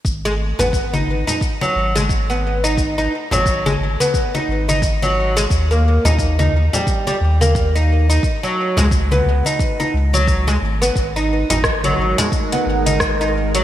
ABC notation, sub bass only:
X:1
M:4/4
L:1/16
Q:"Swing 16ths" 1/4=88
K:G#m
V:1 name="Sub bass" clef=bass
G,,,3 G,,,3 G,,, z3 G,,,6- | G,,,2 z G,,,3 G,,, z3 G,,,6 | D,,3 D,,3 D,, z3 D,,6 | z3 C,,3 C,, z3 C,,4 G,,,2 |
G,,,3 G,,,3 G,,, z3 G,,,6 |]